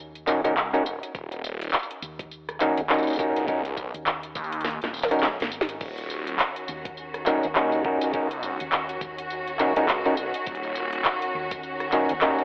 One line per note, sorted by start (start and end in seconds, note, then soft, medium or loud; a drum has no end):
0.00 0.26 D#2 loud
0.16 closed hi-hat soft
0.16 tambourine soft
0.27 0.42 D#1 loud
0.27 0.41 C#4 medium
0.27 0.41 D#4 medium
0.27 0.41 F#4 medium
0.27 0.41 A#4 medium
0.27 clap medium
0.27 tambourine medium
0.44 1.00 C#2 medium
0.44 0.54 C#4 medium
0.44 0.54 D#4 medium
0.44 0.54 F#4 medium
0.44 0.54 A#4 loud
0.44 closed hi-hat medium
0.44 tambourine soft
0.57 clap loud
0.57 tambourine soft
0.73 0.83 C#4 medium
0.73 0.83 D#4 medium
0.73 0.83 F#4 medium
0.73 0.83 A#4 loud
0.73 tambourine soft
0.86 tambourine medium
1.03 closed hi-hat medium
1.03 tambourine soft
1.15 1.71 D#1 loud
1.15 kick loud
1.15 tambourine soft
1.32 closed hi-hat medium
1.32 tambourine soft
1.44 tambourine medium
1.62 closed hi-hat medium
1.62 tambourine soft
1.64 tambourine soft
1.70 clap loud
1.70 tambourine soft
1.73 tambourine soft
1.79 tambourine soft
1.83 tambourine soft
1.91 closed hi-hat medium
1.91 tambourine soft
2.02 2.59 D#2 loud
2.02 tambourine medium
2.19 kick loud
2.19 closed hi-hat medium
2.19 tambourine soft
2.31 tambourine soft
2.49 cross-stick medium
2.49 closed hi-hat soft
2.49 tambourine soft
2.60 2.75 D#1 loud
2.60 2.81 C#4 medium
2.60 2.81 D#4 medium
2.60 2.81 F#4 medium
2.60 2.81 A#4 loud
2.60 clap medium
2.60 tambourine medium
2.77 2.88 D#2 loud
2.77 closed hi-hat medium
2.77 tambourine soft
2.89 3.33 D#2 loud
2.89 3.16 C#4 medium
2.89 3.16 D#4 medium
2.89 3.16 F#4 medium
2.89 3.16 A#4 loud
2.89 clap loud
2.89 tambourine soft
2.94 tambourine soft
2.98 tambourine soft
3.03 tambourine soft
3.07 tambourine soft
3.10 tambourine soft
3.13 tambourine soft
3.16 kick loud
3.16 tambourine soft
3.19 3.45 C#4 medium
3.19 3.45 D#4 medium
3.19 3.45 F#4 medium
3.19 3.45 A#4 loud
3.19 tambourine medium
3.36 3.91 C#2 loud
3.36 closed hi-hat medium
3.36 tambourine soft
3.48 3.61 C#4 medium
3.48 3.61 D#4 medium
3.48 3.61 F#4 medium
3.48 3.61 A#4 medium
3.48 kick loud
3.48 tambourine soft
3.65 closed hi-hat medium
3.65 tambourine soft
3.77 kick medium
3.77 tambourine medium
3.94 4.33 D#2 medium
3.94 closed hi-hat medium
3.94 tambourine soft
4.06 clap loud
4.06 tambourine soft
4.23 closed hi-hat medium
4.23 tambourine soft
4.35 4.79 D#2 loud
4.35 kick loud
4.35 tambourine medium
4.44 tambourine soft
4.52 closed hi-hat medium
4.61 snare medium
4.61 closed hi-hat medium
4.61 tambourine soft
4.70 closed hi-hat soft
4.81 5.20 D#1 loud
4.81 snare medium
4.81 closed hi-hat soft
4.81 tambourine soft
4.94 tambourine medium
4.96 tambourine medium
4.99 tambourine soft
5.02 snare medium
5.02 tambourine soft
5.08 5.27 D#4 medium
5.08 5.27 F#4 medium
5.08 closed hi-hat medium
5.08 tambourine soft
5.11 5.27 C#4 medium
5.11 5.27 A#4 loud
5.11 tambourine soft
5.13 tambourine soft
5.19 5.37 D1 loud
5.19 tambourine soft
5.23 snare medium
5.23 clap loud
5.23 tambourine soft
5.40 5.79 G#1 loud
5.40 snare loud
5.40 closed hi-hat soft
5.40 tambourine soft
5.52 tambourine medium
5.61 snare loud
5.69 closed hi-hat medium
5.69 tambourine soft
5.81 6.37 D#1 medium
5.81 12.44 D#3 medium
5.81 12.44 C#4 medium
5.81 12.44 F#4 medium
5.81 kick loud
5.81 crash medium
5.81 tambourine soft
5.98 closed hi-hat medium
5.98 tambourine soft
6.10 tambourine medium
6.27 closed hi-hat medium
6.27 tambourine soft
6.39 clap loud
6.39 tambourine soft
6.56 closed hi-hat medium
6.56 tambourine soft
6.68 7.25 D#2 loud
6.68 tambourine medium
6.85 kick loud
6.85 closed hi-hat medium
6.85 tambourine soft
6.97 tambourine soft
7.14 cross-stick medium
7.14 closed hi-hat soft
7.14 tambourine soft
7.26 7.41 D#1 loud
7.26 7.47 C#4 medium
7.26 7.47 D#4 medium
7.26 7.47 F#4 medium
7.26 7.47 A#4 loud
7.26 clap medium
7.26 tambourine medium
7.43 7.54 D#2 loud
7.43 tambourine soft
7.55 7.99 D#2 loud
7.55 7.82 C#4 medium
7.55 7.82 D#4 medium
7.55 7.82 F#4 medium
7.55 7.82 A#4 loud
7.55 clap loud
7.55 tambourine soft
7.72 tambourine soft
7.85 8.12 C#4 medium
7.85 8.12 D#4 medium
7.85 8.12 F#4 medium
7.85 8.12 A#4 loud
7.85 kick loud
8.02 8.58 C#2 medium
8.02 closed hi-hat medium
8.02 tambourine medium
8.14 8.27 C#4 medium
8.14 8.28 D#4 medium
8.14 8.28 F#4 medium
8.14 8.27 A#4 medium
8.14 kick loud
8.14 tambourine soft
8.31 closed hi-hat medium
8.31 tambourine soft
8.43 tambourine medium
8.60 9.00 D#2 loud
8.60 closed hi-hat medium
8.60 tambourine soft
8.72 clap loud
8.72 tambourine soft
8.89 closed hi-hat medium
8.89 tambourine soft
9.01 9.58 D#2 loud
9.01 kick loud
9.01 tambourine medium
9.18 closed hi-hat medium
9.18 tambourine soft
9.30 tambourine soft
9.47 closed hi-hat soft
9.47 tambourine soft
9.59 9.74 D#1 loud
9.59 9.73 C#4 medium
9.59 9.73 D#4 medium
9.59 9.73 F#4 medium
9.59 9.73 A#4 medium
9.59 clap medium
9.59 tambourine medium
9.76 10.16 C#2 loud
9.76 9.86 C#4 medium
9.76 9.86 D#4 medium
9.76 9.86 F#4 medium
9.76 9.86 A#4 loud
9.76 closed hi-hat medium
9.76 tambourine soft
9.88 clap loud
9.88 tambourine soft
10.05 10.15 C#4 medium
10.05 10.15 D#4 medium
10.05 10.15 F#4 medium
10.05 10.15 A#4 loud
10.05 tambourine soft
10.16 10.32 C2 loud
10.16 tambourine medium
10.34 closed hi-hat medium
10.34 tambourine soft
10.46 11.04 D#1 loud
10.46 kick loud
10.46 tambourine soft
10.55 closed hi-hat medium
10.63 tambourine soft
10.75 tambourine medium
10.93 closed hi-hat medium
10.93 tambourine soft
11.05 clap loud
11.05 tambourine soft
11.22 closed hi-hat medium
11.22 tambourine soft
11.35 11.91 D#2 loud
11.51 kick loud
11.51 closed hi-hat medium
11.51 tambourine medium
11.63 tambourine soft
11.80 cross-stick medium
11.80 closed hi-hat soft
11.80 tambourine soft
11.92 12.07 D#1 loud
11.92 12.13 C#4 medium
11.92 12.13 D#4 medium
11.92 12.13 F#4 medium
11.92 12.13 A#4 loud
11.92 clap medium
11.92 tambourine medium
12.09 12.20 D#2 loud
12.09 closed hi-hat medium
12.09 tambourine soft
12.21 12.44 D#2 loud
12.21 12.44 C#4 medium
12.21 12.44 D#4 medium
12.21 12.44 F#4 medium
12.21 12.44 A#4 loud
12.21 clap loud
12.21 tambourine soft
12.38 tambourine soft